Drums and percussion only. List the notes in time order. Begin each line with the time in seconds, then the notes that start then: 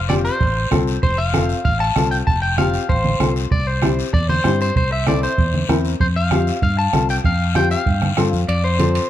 0.10 bombo rim, high conga, short guiro
0.25 short guiro
0.41 bombo low, long guiro
0.72 bombo low, bombo rim, high conga, short guiro
0.87 short guiro
1.03 bombo low, long guiro
1.34 bombo rim, high conga, short guiro
1.49 short guiro
1.65 bombo low, long guiro
1.80 bombo rim
1.96 bombo rim, high conga, short guiro
2.12 short guiro
2.27 bombo low, long guiro
2.58 bombo rim, high conga, short guiro
2.73 short guiro
2.89 bombo low, long guiro
3.05 high conga
3.20 bombo rim, high conga, short guiro
3.36 short guiro
3.51 bombo low, long guiro
3.82 bombo rim, high conga, short guiro
3.99 short guiro
4.13 bombo low, long guiro
4.29 high conga
4.44 bombo rim, high conga, short guiro
4.61 short guiro
4.76 bombo low, long guiro
5.07 bombo rim, high conga, short guiro
5.23 short guiro
5.38 bombo low, long guiro
5.54 high conga
5.69 bombo rim, high conga, short guiro
5.85 short guiro
6.00 bombo low, long guiro
6.31 bombo rim, high conga, short guiro
6.47 short guiro
6.62 bombo low, long guiro
6.93 bombo rim, high conga, short guiro
7.09 short guiro
7.24 bombo low, long guiro
7.55 bombo rim, high conga, short guiro
7.71 short guiro
7.86 bombo low, long guiro
8.02 bombo rim, high conga
8.17 bombo rim, high conga, short guiro
8.33 short guiro
8.48 high timbale, long guiro
8.79 high conga, high timbale, short guiro
8.95 high timbale, short guiro